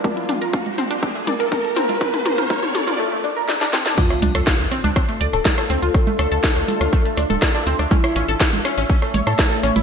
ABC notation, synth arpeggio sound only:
X:1
M:4/4
L:1/16
Q:1/4=122
K:Dm
V:1 name="Synth arpeggio sound"
D E D B F z C D C A, d B B A C F | z A, B B B z A F A, A, D B D D C D | D E D A F z C D C A, d A A A C F | z A, A A A z A F A, A, D A D D C D |
^C E C A E z C C C A, ^c A A A C E |]